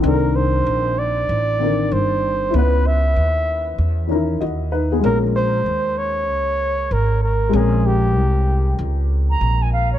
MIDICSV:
0, 0, Header, 1, 5, 480
1, 0, Start_track
1, 0, Tempo, 625000
1, 27, Time_signature, 4, 2, 24, 8
1, 7671, End_track
2, 0, Start_track
2, 0, Title_t, "Flute"
2, 0, Program_c, 0, 73
2, 7143, Note_on_c, 0, 82, 72
2, 7389, Note_on_c, 0, 80, 78
2, 7400, Note_off_c, 0, 82, 0
2, 7466, Note_off_c, 0, 80, 0
2, 7472, Note_on_c, 0, 77, 88
2, 7617, Note_off_c, 0, 77, 0
2, 7625, Note_on_c, 0, 73, 77
2, 7671, Note_off_c, 0, 73, 0
2, 7671, End_track
3, 0, Start_track
3, 0, Title_t, "Flugelhorn"
3, 0, Program_c, 1, 56
3, 39, Note_on_c, 1, 70, 86
3, 276, Note_on_c, 1, 72, 97
3, 288, Note_off_c, 1, 70, 0
3, 759, Note_on_c, 1, 74, 109
3, 770, Note_off_c, 1, 72, 0
3, 1481, Note_on_c, 1, 72, 92
3, 1492, Note_off_c, 1, 74, 0
3, 1964, Note_on_c, 1, 71, 96
3, 1976, Note_off_c, 1, 72, 0
3, 2204, Note_on_c, 1, 76, 104
3, 2215, Note_off_c, 1, 71, 0
3, 2915, Note_off_c, 1, 76, 0
3, 3879, Note_on_c, 1, 70, 93
3, 3985, Note_off_c, 1, 70, 0
3, 4115, Note_on_c, 1, 72, 107
3, 4594, Note_on_c, 1, 73, 110
3, 4606, Note_off_c, 1, 72, 0
3, 5318, Note_on_c, 1, 70, 94
3, 5329, Note_off_c, 1, 73, 0
3, 5552, Note_off_c, 1, 70, 0
3, 5556, Note_on_c, 1, 70, 86
3, 5802, Note_on_c, 1, 68, 94
3, 5813, Note_off_c, 1, 70, 0
3, 6040, Note_on_c, 1, 67, 93
3, 6051, Note_off_c, 1, 68, 0
3, 6753, Note_off_c, 1, 67, 0
3, 7671, End_track
4, 0, Start_track
4, 0, Title_t, "Upright piano"
4, 0, Program_c, 2, 0
4, 0, Note_on_c, 2, 51, 64
4, 19, Note_on_c, 2, 60, 59
4, 39, Note_on_c, 2, 62, 60
4, 57, Note_on_c, 2, 69, 58
4, 106, Note_on_c, 2, 70, 70
4, 107, Note_off_c, 2, 69, 0
4, 1189, Note_off_c, 2, 51, 0
4, 1199, Note_off_c, 2, 60, 0
4, 1209, Note_off_c, 2, 62, 0
4, 1218, Note_on_c, 2, 50, 40
4, 1227, Note_on_c, 2, 60, 47
4, 1236, Note_off_c, 2, 70, 0
4, 1237, Note_on_c, 2, 62, 45
4, 1247, Note_on_c, 2, 70, 53
4, 1267, Note_on_c, 2, 51, 52
4, 1287, Note_off_c, 2, 50, 0
4, 1922, Note_on_c, 2, 64, 59
4, 1941, Note_on_c, 2, 61, 54
4, 1947, Note_off_c, 2, 60, 0
4, 1952, Note_off_c, 2, 62, 0
4, 1957, Note_off_c, 2, 70, 0
4, 1960, Note_on_c, 2, 59, 57
4, 1967, Note_off_c, 2, 51, 0
4, 1980, Note_on_c, 2, 71, 72
4, 3110, Note_off_c, 2, 64, 0
4, 3120, Note_off_c, 2, 61, 0
4, 3130, Note_off_c, 2, 59, 0
4, 3130, Note_on_c, 2, 51, 44
4, 3140, Note_off_c, 2, 71, 0
4, 3141, Note_on_c, 2, 61, 51
4, 3149, Note_on_c, 2, 63, 52
4, 3160, Note_on_c, 2, 70, 63
4, 3179, Note_on_c, 2, 64, 55
4, 3203, Note_off_c, 2, 51, 0
4, 3384, Note_off_c, 2, 61, 0
4, 3384, Note_on_c, 2, 75, 61
4, 3388, Note_off_c, 2, 63, 0
4, 3388, Note_on_c, 2, 66, 48
4, 3394, Note_off_c, 2, 70, 0
4, 3613, Note_off_c, 2, 75, 0
4, 3616, Note_off_c, 2, 66, 0
4, 3625, Note_on_c, 2, 71, 64
4, 3629, Note_on_c, 2, 63, 53
4, 3774, Note_off_c, 2, 71, 0
4, 3776, Note_off_c, 2, 63, 0
4, 3779, Note_on_c, 2, 68, 62
4, 3783, Note_on_c, 2, 59, 54
4, 3834, Note_on_c, 2, 56, 61
4, 3853, Note_on_c, 2, 58, 54
4, 3873, Note_on_c, 2, 61, 58
4, 3883, Note_off_c, 2, 64, 0
4, 3891, Note_on_c, 2, 70, 68
4, 4008, Note_off_c, 2, 68, 0
4, 4011, Note_off_c, 2, 59, 0
4, 5740, Note_off_c, 2, 56, 0
4, 5749, Note_off_c, 2, 58, 0
4, 5754, Note_on_c, 2, 56, 59
4, 5759, Note_off_c, 2, 61, 0
4, 5768, Note_off_c, 2, 70, 0
4, 5773, Note_on_c, 2, 60, 57
4, 5793, Note_on_c, 2, 61, 58
4, 5813, Note_on_c, 2, 70, 75
4, 7660, Note_off_c, 2, 56, 0
4, 7669, Note_off_c, 2, 60, 0
4, 7671, Note_off_c, 2, 61, 0
4, 7671, Note_off_c, 2, 70, 0
4, 7671, End_track
5, 0, Start_track
5, 0, Title_t, "Upright bass"
5, 0, Program_c, 3, 32
5, 28, Note_on_c, 3, 36, 107
5, 483, Note_off_c, 3, 36, 0
5, 511, Note_on_c, 3, 34, 91
5, 965, Note_off_c, 3, 34, 0
5, 992, Note_on_c, 3, 33, 94
5, 1446, Note_off_c, 3, 33, 0
5, 1471, Note_on_c, 3, 31, 91
5, 1925, Note_off_c, 3, 31, 0
5, 1949, Note_on_c, 3, 37, 100
5, 2404, Note_off_c, 3, 37, 0
5, 2429, Note_on_c, 3, 39, 83
5, 2884, Note_off_c, 3, 39, 0
5, 2906, Note_on_c, 3, 40, 89
5, 3362, Note_off_c, 3, 40, 0
5, 3390, Note_on_c, 3, 39, 87
5, 3845, Note_off_c, 3, 39, 0
5, 3868, Note_on_c, 3, 34, 99
5, 4324, Note_off_c, 3, 34, 0
5, 4348, Note_on_c, 3, 39, 79
5, 4827, Note_off_c, 3, 39, 0
5, 4827, Note_on_c, 3, 37, 88
5, 5283, Note_off_c, 3, 37, 0
5, 5307, Note_on_c, 3, 32, 87
5, 5763, Note_off_c, 3, 32, 0
5, 5786, Note_on_c, 3, 34, 107
5, 6267, Note_off_c, 3, 34, 0
5, 6267, Note_on_c, 3, 36, 82
5, 6723, Note_off_c, 3, 36, 0
5, 6748, Note_on_c, 3, 37, 100
5, 7203, Note_off_c, 3, 37, 0
5, 7226, Note_on_c, 3, 34, 89
5, 7671, Note_off_c, 3, 34, 0
5, 7671, End_track
0, 0, End_of_file